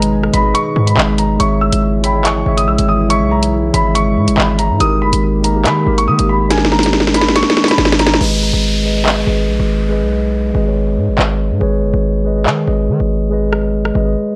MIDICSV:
0, 0, Header, 1, 7, 480
1, 0, Start_track
1, 0, Tempo, 425532
1, 1577, Time_signature, 4, 2, 24, 8
1, 16194, End_track
2, 0, Start_track
2, 0, Title_t, "Grand piano"
2, 0, Program_c, 0, 0
2, 0, Note_on_c, 0, 82, 82
2, 121, Note_off_c, 0, 82, 0
2, 380, Note_on_c, 0, 83, 90
2, 603, Note_off_c, 0, 83, 0
2, 614, Note_on_c, 0, 85, 92
2, 961, Note_off_c, 0, 85, 0
2, 980, Note_on_c, 0, 83, 72
2, 1314, Note_off_c, 0, 83, 0
2, 1339, Note_on_c, 0, 82, 80
2, 1563, Note_off_c, 0, 82, 0
2, 1577, Note_on_c, 0, 85, 83
2, 1802, Note_off_c, 0, 85, 0
2, 1819, Note_on_c, 0, 88, 79
2, 2043, Note_off_c, 0, 88, 0
2, 2298, Note_on_c, 0, 83, 79
2, 2523, Note_off_c, 0, 83, 0
2, 2538, Note_on_c, 0, 85, 82
2, 2883, Note_off_c, 0, 85, 0
2, 2902, Note_on_c, 0, 87, 85
2, 3009, Note_off_c, 0, 87, 0
2, 3020, Note_on_c, 0, 88, 72
2, 3244, Note_off_c, 0, 88, 0
2, 3255, Note_on_c, 0, 87, 79
2, 3481, Note_off_c, 0, 87, 0
2, 3497, Note_on_c, 0, 85, 91
2, 3722, Note_off_c, 0, 85, 0
2, 3738, Note_on_c, 0, 82, 78
2, 3962, Note_off_c, 0, 82, 0
2, 4219, Note_on_c, 0, 83, 96
2, 4443, Note_off_c, 0, 83, 0
2, 4455, Note_on_c, 0, 85, 92
2, 4907, Note_off_c, 0, 85, 0
2, 4936, Note_on_c, 0, 83, 71
2, 5161, Note_off_c, 0, 83, 0
2, 5178, Note_on_c, 0, 82, 86
2, 5402, Note_off_c, 0, 82, 0
2, 5419, Note_on_c, 0, 87, 87
2, 5643, Note_off_c, 0, 87, 0
2, 5660, Note_on_c, 0, 83, 86
2, 5884, Note_off_c, 0, 83, 0
2, 6136, Note_on_c, 0, 82, 75
2, 6361, Note_off_c, 0, 82, 0
2, 6380, Note_on_c, 0, 83, 86
2, 6724, Note_off_c, 0, 83, 0
2, 6745, Note_on_c, 0, 85, 79
2, 6851, Note_off_c, 0, 85, 0
2, 6855, Note_on_c, 0, 87, 85
2, 7081, Note_off_c, 0, 87, 0
2, 7098, Note_on_c, 0, 83, 76
2, 7323, Note_off_c, 0, 83, 0
2, 7338, Note_on_c, 0, 80, 83
2, 7562, Note_off_c, 0, 80, 0
2, 7577, Note_on_c, 0, 82, 80
2, 7802, Note_off_c, 0, 82, 0
2, 8057, Note_on_c, 0, 83, 83
2, 8282, Note_off_c, 0, 83, 0
2, 8300, Note_on_c, 0, 85, 96
2, 8644, Note_off_c, 0, 85, 0
2, 8664, Note_on_c, 0, 83, 81
2, 8996, Note_off_c, 0, 83, 0
2, 9018, Note_on_c, 0, 82, 80
2, 9243, Note_off_c, 0, 82, 0
2, 16194, End_track
3, 0, Start_track
3, 0, Title_t, "Tine electric piano"
3, 0, Program_c, 1, 4
3, 0, Control_c, 1, 64, 127
3, 0, Note_on_c, 1, 56, 101
3, 0, Note_on_c, 1, 68, 95
3, 0, Note_on_c, 1, 71, 90
3, 0, Note_on_c, 1, 73, 118
3, 0, Note_on_c, 1, 75, 106
3, 292, Note_off_c, 1, 56, 0
3, 299, Note_off_c, 1, 68, 0
3, 306, Note_off_c, 1, 71, 0
3, 313, Note_off_c, 1, 75, 0
3, 356, Note_on_c, 1, 56, 73
3, 370, Note_on_c, 1, 68, 73
3, 384, Note_on_c, 1, 71, 69
3, 398, Note_on_c, 1, 75, 93
3, 469, Note_off_c, 1, 56, 0
3, 483, Note_on_c, 1, 56, 73
3, 484, Note_off_c, 1, 68, 0
3, 494, Note_off_c, 1, 71, 0
3, 497, Note_on_c, 1, 68, 68
3, 501, Note_off_c, 1, 75, 0
3, 511, Note_on_c, 1, 71, 64
3, 525, Note_on_c, 1, 75, 81
3, 1340, Note_off_c, 1, 56, 0
3, 1347, Note_off_c, 1, 68, 0
3, 1354, Note_off_c, 1, 71, 0
3, 1361, Note_off_c, 1, 75, 0
3, 1556, Note_on_c, 1, 56, 102
3, 1570, Note_on_c, 1, 68, 98
3, 1584, Note_off_c, 1, 73, 0
3, 1584, Note_on_c, 1, 73, 95
3, 1590, Control_c, 1, 64, 0
3, 1598, Note_on_c, 1, 76, 110
3, 1808, Control_c, 1, 64, 127
3, 2211, Note_off_c, 1, 56, 0
3, 2218, Note_off_c, 1, 68, 0
3, 2225, Note_off_c, 1, 73, 0
3, 2232, Note_off_c, 1, 76, 0
3, 2277, Note_on_c, 1, 56, 73
3, 2291, Note_on_c, 1, 68, 68
3, 2305, Note_on_c, 1, 73, 74
3, 2319, Note_on_c, 1, 79, 82
3, 2390, Note_off_c, 1, 56, 0
3, 2404, Note_off_c, 1, 68, 0
3, 2404, Note_on_c, 1, 56, 75
3, 2414, Note_off_c, 1, 73, 0
3, 2418, Note_on_c, 1, 68, 64
3, 2421, Note_off_c, 1, 79, 0
3, 2432, Note_on_c, 1, 73, 64
3, 2446, Note_on_c, 1, 75, 74
3, 2729, Note_off_c, 1, 56, 0
3, 2736, Note_off_c, 1, 68, 0
3, 2743, Note_off_c, 1, 73, 0
3, 2750, Note_off_c, 1, 75, 0
3, 2757, Note_on_c, 1, 56, 86
3, 2771, Note_on_c, 1, 68, 79
3, 2785, Note_on_c, 1, 73, 81
3, 2799, Note_on_c, 1, 76, 91
3, 3412, Note_off_c, 1, 56, 0
3, 3419, Note_off_c, 1, 68, 0
3, 3426, Note_off_c, 1, 73, 0
3, 3433, Note_off_c, 1, 76, 0
3, 3477, Note_on_c, 1, 56, 101
3, 3491, Note_on_c, 1, 68, 100
3, 3505, Note_on_c, 1, 73, 93
3, 3519, Note_on_c, 1, 76, 111
3, 4132, Note_off_c, 1, 56, 0
3, 4139, Note_off_c, 1, 68, 0
3, 4146, Note_off_c, 1, 73, 0
3, 4153, Note_off_c, 1, 76, 0
3, 4196, Note_on_c, 1, 56, 82
3, 4210, Note_on_c, 1, 68, 69
3, 4224, Note_on_c, 1, 73, 72
3, 4238, Note_on_c, 1, 76, 83
3, 4309, Note_off_c, 1, 56, 0
3, 4323, Note_off_c, 1, 68, 0
3, 4323, Note_on_c, 1, 56, 66
3, 4334, Note_off_c, 1, 73, 0
3, 4337, Note_on_c, 1, 68, 65
3, 4341, Note_off_c, 1, 76, 0
3, 4351, Note_on_c, 1, 73, 63
3, 4365, Note_on_c, 1, 76, 77
3, 5180, Note_off_c, 1, 56, 0
3, 5187, Note_off_c, 1, 68, 0
3, 5194, Note_off_c, 1, 73, 0
3, 5201, Note_off_c, 1, 76, 0
3, 5396, Note_on_c, 1, 56, 104
3, 5410, Note_on_c, 1, 63, 97
3, 5424, Note_on_c, 1, 67, 97
3, 5433, Control_c, 1, 64, 0
3, 5438, Note_on_c, 1, 70, 105
3, 5634, Control_c, 1, 64, 127
3, 6051, Note_off_c, 1, 56, 0
3, 6058, Note_off_c, 1, 63, 0
3, 6065, Note_off_c, 1, 67, 0
3, 6072, Note_off_c, 1, 70, 0
3, 6117, Note_on_c, 1, 56, 80
3, 6131, Note_on_c, 1, 63, 69
3, 6145, Note_on_c, 1, 67, 70
3, 6159, Note_on_c, 1, 70, 81
3, 6230, Note_off_c, 1, 56, 0
3, 6243, Note_on_c, 1, 56, 67
3, 6244, Note_off_c, 1, 63, 0
3, 6254, Note_off_c, 1, 67, 0
3, 6257, Note_on_c, 1, 63, 65
3, 6261, Note_off_c, 1, 70, 0
3, 6271, Note_on_c, 1, 67, 68
3, 6285, Note_on_c, 1, 70, 81
3, 6569, Note_off_c, 1, 56, 0
3, 6576, Note_off_c, 1, 63, 0
3, 6583, Note_off_c, 1, 67, 0
3, 6590, Note_off_c, 1, 70, 0
3, 6596, Note_on_c, 1, 56, 82
3, 6610, Note_on_c, 1, 63, 70
3, 6624, Note_on_c, 1, 67, 73
3, 6638, Note_on_c, 1, 70, 85
3, 7251, Note_off_c, 1, 56, 0
3, 7258, Note_off_c, 1, 63, 0
3, 7265, Note_off_c, 1, 67, 0
3, 7272, Note_off_c, 1, 70, 0
3, 7317, Note_on_c, 1, 56, 102
3, 7331, Note_on_c, 1, 63, 90
3, 7345, Note_on_c, 1, 67, 92
3, 7359, Note_on_c, 1, 70, 114
3, 7972, Note_off_c, 1, 56, 0
3, 7979, Note_off_c, 1, 63, 0
3, 7986, Note_off_c, 1, 67, 0
3, 7993, Note_off_c, 1, 70, 0
3, 8037, Note_on_c, 1, 56, 81
3, 8051, Note_on_c, 1, 63, 72
3, 8065, Note_on_c, 1, 67, 62
3, 8079, Note_on_c, 1, 70, 83
3, 8149, Note_off_c, 1, 56, 0
3, 8163, Note_off_c, 1, 63, 0
3, 8163, Note_on_c, 1, 56, 69
3, 8174, Note_off_c, 1, 67, 0
3, 8177, Note_on_c, 1, 63, 63
3, 8181, Note_off_c, 1, 70, 0
3, 8191, Note_on_c, 1, 67, 60
3, 8205, Note_on_c, 1, 58, 81
3, 9020, Note_off_c, 1, 56, 0
3, 9027, Note_off_c, 1, 63, 0
3, 9034, Note_off_c, 1, 67, 0
3, 9041, Note_off_c, 1, 58, 0
3, 9236, Note_on_c, 1, 56, 92
3, 9250, Note_on_c, 1, 68, 96
3, 9264, Note_on_c, 1, 71, 88
3, 9272, Control_c, 1, 64, 0
3, 9277, Note_on_c, 1, 75, 106
3, 9487, Control_c, 1, 64, 127
3, 9891, Note_off_c, 1, 56, 0
3, 9898, Note_off_c, 1, 68, 0
3, 9905, Note_off_c, 1, 71, 0
3, 9912, Note_off_c, 1, 75, 0
3, 9957, Note_on_c, 1, 56, 70
3, 9971, Note_on_c, 1, 68, 71
3, 9985, Note_on_c, 1, 71, 66
3, 9999, Note_on_c, 1, 75, 82
3, 10068, Note_off_c, 1, 56, 0
3, 10082, Note_off_c, 1, 68, 0
3, 10082, Note_on_c, 1, 56, 69
3, 10094, Note_off_c, 1, 71, 0
3, 10096, Note_on_c, 1, 68, 65
3, 10101, Note_off_c, 1, 75, 0
3, 10110, Note_on_c, 1, 71, 63
3, 10124, Note_on_c, 1, 75, 76
3, 10408, Note_off_c, 1, 56, 0
3, 10415, Note_off_c, 1, 68, 0
3, 10422, Note_off_c, 1, 71, 0
3, 10429, Note_off_c, 1, 75, 0
3, 10437, Note_on_c, 1, 56, 74
3, 10451, Note_on_c, 1, 68, 74
3, 10465, Note_on_c, 1, 71, 73
3, 10479, Note_on_c, 1, 75, 79
3, 11092, Note_off_c, 1, 56, 0
3, 11099, Note_off_c, 1, 68, 0
3, 11105, Note_off_c, 1, 71, 0
3, 11112, Note_off_c, 1, 75, 0
3, 11156, Note_on_c, 1, 56, 100
3, 11170, Note_on_c, 1, 68, 89
3, 11184, Note_on_c, 1, 71, 97
3, 11198, Note_on_c, 1, 75, 103
3, 11811, Note_off_c, 1, 56, 0
3, 11818, Note_off_c, 1, 68, 0
3, 11825, Note_off_c, 1, 71, 0
3, 11832, Note_off_c, 1, 75, 0
3, 11875, Note_on_c, 1, 56, 76
3, 11890, Note_on_c, 1, 68, 64
3, 11903, Note_on_c, 1, 71, 69
3, 11918, Note_on_c, 1, 75, 85
3, 11990, Note_off_c, 1, 56, 0
3, 12003, Note_on_c, 1, 56, 72
3, 12004, Note_off_c, 1, 68, 0
3, 12013, Note_off_c, 1, 71, 0
3, 12017, Note_on_c, 1, 68, 64
3, 12020, Note_off_c, 1, 75, 0
3, 12031, Note_on_c, 1, 71, 63
3, 12045, Note_on_c, 1, 73, 80
3, 12860, Note_off_c, 1, 56, 0
3, 12867, Note_off_c, 1, 68, 0
3, 12874, Note_off_c, 1, 71, 0
3, 12881, Note_off_c, 1, 73, 0
3, 13075, Note_on_c, 1, 56, 101
3, 13089, Note_on_c, 1, 68, 94
3, 13104, Note_on_c, 1, 71, 97
3, 13118, Note_on_c, 1, 73, 117
3, 13731, Note_off_c, 1, 56, 0
3, 13738, Note_off_c, 1, 68, 0
3, 13745, Note_off_c, 1, 71, 0
3, 13752, Note_off_c, 1, 73, 0
3, 13796, Note_on_c, 1, 56, 74
3, 13811, Note_on_c, 1, 68, 68
3, 13825, Note_on_c, 1, 71, 72
3, 13839, Note_on_c, 1, 75, 88
3, 13909, Note_off_c, 1, 56, 0
3, 13923, Note_off_c, 1, 68, 0
3, 13923, Note_on_c, 1, 56, 68
3, 13934, Note_off_c, 1, 71, 0
3, 13937, Note_on_c, 1, 68, 70
3, 13941, Note_off_c, 1, 75, 0
3, 13950, Note_on_c, 1, 71, 62
3, 13965, Note_on_c, 1, 75, 75
3, 14249, Note_off_c, 1, 56, 0
3, 14256, Note_off_c, 1, 68, 0
3, 14263, Note_off_c, 1, 71, 0
3, 14270, Note_off_c, 1, 75, 0
3, 14276, Note_on_c, 1, 56, 76
3, 14290, Note_on_c, 1, 68, 74
3, 14304, Note_on_c, 1, 71, 73
3, 14318, Note_on_c, 1, 75, 89
3, 14931, Note_off_c, 1, 56, 0
3, 14938, Note_off_c, 1, 68, 0
3, 14945, Note_off_c, 1, 71, 0
3, 14952, Note_off_c, 1, 75, 0
3, 14997, Note_on_c, 1, 56, 101
3, 15011, Note_on_c, 1, 68, 90
3, 15025, Note_on_c, 1, 71, 89
3, 15039, Note_on_c, 1, 75, 101
3, 15652, Note_off_c, 1, 56, 0
3, 15659, Note_off_c, 1, 68, 0
3, 15666, Note_off_c, 1, 71, 0
3, 15673, Note_off_c, 1, 75, 0
3, 15716, Note_on_c, 1, 56, 71
3, 15730, Note_on_c, 1, 68, 72
3, 15744, Note_on_c, 1, 71, 72
3, 15758, Note_on_c, 1, 75, 91
3, 15829, Note_off_c, 1, 56, 0
3, 15843, Note_on_c, 1, 56, 70
3, 15844, Note_off_c, 1, 68, 0
3, 15854, Note_off_c, 1, 71, 0
3, 15857, Note_on_c, 1, 68, 66
3, 15861, Note_off_c, 1, 75, 0
3, 15871, Note_on_c, 1, 71, 62
3, 15885, Note_on_c, 1, 75, 76
3, 16194, Note_off_c, 1, 56, 0
3, 16194, Note_off_c, 1, 68, 0
3, 16194, Note_off_c, 1, 71, 0
3, 16194, Note_off_c, 1, 75, 0
3, 16194, End_track
4, 0, Start_track
4, 0, Title_t, "Analog synth pad"
4, 0, Program_c, 2, 89
4, 0, Note_on_c, 2, 47, 85
4, 0, Note_on_c, 2, 51, 75
4, 0, Note_on_c, 2, 56, 76
4, 0, Note_on_c, 2, 63, 93
4, 1532, Note_off_c, 2, 47, 0
4, 1532, Note_off_c, 2, 51, 0
4, 1532, Note_off_c, 2, 63, 0
4, 1577, Note_on_c, 2, 49, 85
4, 1577, Note_on_c, 2, 52, 77
4, 1578, Note_on_c, 2, 64, 92
4, 5372, Note_off_c, 2, 56, 0
4, 5379, Note_off_c, 2, 49, 0
4, 5379, Note_off_c, 2, 52, 0
4, 5379, Note_off_c, 2, 64, 0
4, 5418, Note_on_c, 2, 51, 83
4, 5418, Note_on_c, 2, 58, 81
4, 5418, Note_on_c, 2, 67, 93
4, 9219, Note_off_c, 2, 51, 0
4, 9219, Note_off_c, 2, 58, 0
4, 9219, Note_off_c, 2, 67, 0
4, 16194, End_track
5, 0, Start_track
5, 0, Title_t, "808-style bass"
5, 0, Program_c, 3, 38
5, 0, Note_on_c, 3, 32, 104
5, 335, Note_off_c, 3, 32, 0
5, 377, Note_on_c, 3, 32, 103
5, 608, Note_off_c, 3, 32, 0
5, 858, Note_on_c, 3, 44, 102
5, 1088, Note_off_c, 3, 44, 0
5, 1098, Note_on_c, 3, 32, 107
5, 1558, Note_off_c, 3, 32, 0
5, 1577, Note_on_c, 3, 32, 115
5, 1930, Note_off_c, 3, 32, 0
5, 1945, Note_on_c, 3, 32, 105
5, 2744, Note_off_c, 3, 32, 0
5, 2777, Note_on_c, 3, 32, 101
5, 3017, Note_on_c, 3, 34, 100
5, 3034, Note_off_c, 3, 32, 0
5, 3138, Note_off_c, 3, 34, 0
5, 3145, Note_on_c, 3, 32, 104
5, 3624, Note_on_c, 3, 35, 105
5, 3641, Note_off_c, 3, 32, 0
5, 4188, Note_off_c, 3, 35, 0
5, 4217, Note_on_c, 3, 32, 106
5, 4697, Note_on_c, 3, 44, 95
5, 4714, Note_off_c, 3, 32, 0
5, 4824, Note_on_c, 3, 32, 99
5, 4841, Note_off_c, 3, 44, 0
5, 4932, Note_off_c, 3, 32, 0
5, 4937, Note_on_c, 3, 32, 107
5, 5305, Note_on_c, 3, 44, 101
5, 5321, Note_off_c, 3, 32, 0
5, 5412, Note_off_c, 3, 44, 0
5, 5417, Note_on_c, 3, 32, 107
5, 5657, Note_on_c, 3, 31, 100
5, 5674, Note_off_c, 3, 32, 0
5, 5778, Note_off_c, 3, 31, 0
5, 5784, Note_on_c, 3, 32, 110
5, 6378, Note_on_c, 3, 51, 95
5, 6395, Note_off_c, 3, 32, 0
5, 6605, Note_off_c, 3, 51, 0
5, 6618, Note_on_c, 3, 32, 107
5, 6857, Note_on_c, 3, 51, 100
5, 6874, Note_off_c, 3, 32, 0
5, 6978, Note_off_c, 3, 51, 0
5, 6985, Note_on_c, 3, 32, 104
5, 8379, Note_off_c, 3, 32, 0
5, 8777, Note_on_c, 3, 32, 104
5, 9238, Note_off_c, 3, 32, 0
5, 9257, Note_on_c, 3, 32, 109
5, 9610, Note_off_c, 3, 32, 0
5, 9624, Note_on_c, 3, 32, 101
5, 10424, Note_off_c, 3, 32, 0
5, 10457, Note_on_c, 3, 32, 102
5, 10697, Note_on_c, 3, 34, 98
5, 10714, Note_off_c, 3, 32, 0
5, 10818, Note_off_c, 3, 34, 0
5, 10825, Note_on_c, 3, 32, 105
5, 11305, Note_on_c, 3, 35, 99
5, 11322, Note_off_c, 3, 32, 0
5, 11868, Note_off_c, 3, 35, 0
5, 11897, Note_on_c, 3, 32, 107
5, 12377, Note_on_c, 3, 44, 98
5, 12394, Note_off_c, 3, 32, 0
5, 12504, Note_on_c, 3, 32, 97
5, 12521, Note_off_c, 3, 44, 0
5, 12611, Note_off_c, 3, 32, 0
5, 12617, Note_on_c, 3, 32, 110
5, 12984, Note_on_c, 3, 44, 99
5, 13001, Note_off_c, 3, 32, 0
5, 13091, Note_off_c, 3, 44, 0
5, 13097, Note_on_c, 3, 32, 108
5, 13337, Note_on_c, 3, 31, 99
5, 13354, Note_off_c, 3, 32, 0
5, 13458, Note_off_c, 3, 31, 0
5, 13464, Note_on_c, 3, 32, 106
5, 14057, Note_on_c, 3, 51, 98
5, 14074, Note_off_c, 3, 32, 0
5, 14285, Note_off_c, 3, 51, 0
5, 14298, Note_on_c, 3, 32, 103
5, 14538, Note_on_c, 3, 51, 102
5, 14555, Note_off_c, 3, 32, 0
5, 14658, Note_off_c, 3, 51, 0
5, 14665, Note_on_c, 3, 32, 101
5, 15695, Note_off_c, 3, 32, 0
5, 15738, Note_on_c, 3, 32, 106
5, 15968, Note_off_c, 3, 32, 0
5, 16194, End_track
6, 0, Start_track
6, 0, Title_t, "Downlifter"
6, 0, Program_c, 4, 103
6, 9257, Note_on_c, 4, 60, 88
6, 13097, Note_off_c, 4, 60, 0
6, 16194, End_track
7, 0, Start_track
7, 0, Title_t, "Drums"
7, 25, Note_on_c, 9, 42, 90
7, 138, Note_off_c, 9, 42, 0
7, 264, Note_on_c, 9, 37, 65
7, 377, Note_off_c, 9, 37, 0
7, 378, Note_on_c, 9, 42, 79
7, 491, Note_off_c, 9, 42, 0
7, 618, Note_on_c, 9, 42, 80
7, 731, Note_off_c, 9, 42, 0
7, 985, Note_on_c, 9, 42, 68
7, 1098, Note_off_c, 9, 42, 0
7, 1098, Note_on_c, 9, 39, 126
7, 1211, Note_off_c, 9, 39, 0
7, 1334, Note_on_c, 9, 42, 74
7, 1447, Note_off_c, 9, 42, 0
7, 1578, Note_on_c, 9, 42, 84
7, 1690, Note_off_c, 9, 42, 0
7, 1945, Note_on_c, 9, 42, 93
7, 2058, Note_off_c, 9, 42, 0
7, 2298, Note_on_c, 9, 42, 78
7, 2411, Note_off_c, 9, 42, 0
7, 2538, Note_on_c, 9, 39, 121
7, 2539, Note_on_c, 9, 42, 71
7, 2650, Note_off_c, 9, 39, 0
7, 2651, Note_off_c, 9, 42, 0
7, 2905, Note_on_c, 9, 42, 76
7, 3018, Note_off_c, 9, 42, 0
7, 3141, Note_on_c, 9, 42, 78
7, 3253, Note_off_c, 9, 42, 0
7, 3498, Note_on_c, 9, 42, 82
7, 3611, Note_off_c, 9, 42, 0
7, 3866, Note_on_c, 9, 42, 90
7, 3978, Note_off_c, 9, 42, 0
7, 4218, Note_on_c, 9, 42, 79
7, 4331, Note_off_c, 9, 42, 0
7, 4458, Note_on_c, 9, 42, 79
7, 4571, Note_off_c, 9, 42, 0
7, 4825, Note_on_c, 9, 42, 68
7, 4938, Note_off_c, 9, 42, 0
7, 4939, Note_on_c, 9, 39, 122
7, 5052, Note_off_c, 9, 39, 0
7, 5174, Note_on_c, 9, 42, 74
7, 5287, Note_off_c, 9, 42, 0
7, 5418, Note_on_c, 9, 42, 82
7, 5531, Note_off_c, 9, 42, 0
7, 5786, Note_on_c, 9, 42, 93
7, 5898, Note_off_c, 9, 42, 0
7, 6138, Note_on_c, 9, 42, 79
7, 6251, Note_off_c, 9, 42, 0
7, 6377, Note_on_c, 9, 39, 118
7, 6378, Note_on_c, 9, 42, 76
7, 6490, Note_off_c, 9, 39, 0
7, 6491, Note_off_c, 9, 42, 0
7, 6745, Note_on_c, 9, 42, 73
7, 6858, Note_off_c, 9, 42, 0
7, 6980, Note_on_c, 9, 42, 76
7, 7093, Note_off_c, 9, 42, 0
7, 7337, Note_on_c, 9, 38, 65
7, 7337, Note_on_c, 9, 42, 83
7, 7418, Note_off_c, 9, 38, 0
7, 7418, Note_on_c, 9, 38, 56
7, 7450, Note_off_c, 9, 42, 0
7, 7498, Note_off_c, 9, 38, 0
7, 7498, Note_on_c, 9, 38, 67
7, 7578, Note_off_c, 9, 38, 0
7, 7578, Note_on_c, 9, 38, 57
7, 7658, Note_off_c, 9, 38, 0
7, 7658, Note_on_c, 9, 38, 71
7, 7705, Note_on_c, 9, 42, 91
7, 7738, Note_off_c, 9, 38, 0
7, 7738, Note_on_c, 9, 38, 63
7, 7817, Note_off_c, 9, 38, 0
7, 7817, Note_on_c, 9, 38, 78
7, 7818, Note_off_c, 9, 42, 0
7, 7897, Note_off_c, 9, 38, 0
7, 7897, Note_on_c, 9, 38, 66
7, 7977, Note_off_c, 9, 38, 0
7, 7977, Note_on_c, 9, 38, 77
7, 8057, Note_off_c, 9, 38, 0
7, 8057, Note_on_c, 9, 38, 72
7, 8058, Note_on_c, 9, 42, 77
7, 8137, Note_off_c, 9, 38, 0
7, 8137, Note_on_c, 9, 38, 85
7, 8171, Note_off_c, 9, 42, 0
7, 8217, Note_off_c, 9, 38, 0
7, 8217, Note_on_c, 9, 38, 75
7, 8297, Note_off_c, 9, 38, 0
7, 8297, Note_on_c, 9, 38, 94
7, 8298, Note_on_c, 9, 42, 80
7, 8377, Note_off_c, 9, 38, 0
7, 8377, Note_on_c, 9, 38, 80
7, 8411, Note_off_c, 9, 42, 0
7, 8457, Note_off_c, 9, 38, 0
7, 8457, Note_on_c, 9, 38, 95
7, 8537, Note_off_c, 9, 38, 0
7, 8537, Note_on_c, 9, 38, 83
7, 8617, Note_off_c, 9, 38, 0
7, 8617, Note_on_c, 9, 38, 102
7, 8665, Note_on_c, 9, 42, 68
7, 8697, Note_off_c, 9, 38, 0
7, 8697, Note_on_c, 9, 38, 87
7, 8777, Note_off_c, 9, 38, 0
7, 8777, Note_on_c, 9, 38, 102
7, 8778, Note_off_c, 9, 42, 0
7, 8857, Note_off_c, 9, 38, 0
7, 8857, Note_on_c, 9, 38, 93
7, 8937, Note_off_c, 9, 38, 0
7, 8937, Note_on_c, 9, 38, 110
7, 9014, Note_on_c, 9, 42, 74
7, 9018, Note_off_c, 9, 38, 0
7, 9018, Note_on_c, 9, 38, 92
7, 9098, Note_off_c, 9, 38, 0
7, 9098, Note_on_c, 9, 38, 110
7, 9127, Note_off_c, 9, 42, 0
7, 9177, Note_off_c, 9, 38, 0
7, 9177, Note_on_c, 9, 38, 96
7, 9257, Note_on_c, 9, 49, 96
7, 9290, Note_off_c, 9, 38, 0
7, 9370, Note_off_c, 9, 49, 0
7, 10217, Note_on_c, 9, 39, 117
7, 10330, Note_off_c, 9, 39, 0
7, 12618, Note_on_c, 9, 39, 121
7, 12731, Note_off_c, 9, 39, 0
7, 14057, Note_on_c, 9, 39, 112
7, 14170, Note_off_c, 9, 39, 0
7, 15257, Note_on_c, 9, 37, 85
7, 15370, Note_off_c, 9, 37, 0
7, 15625, Note_on_c, 9, 37, 67
7, 15738, Note_off_c, 9, 37, 0
7, 16194, End_track
0, 0, End_of_file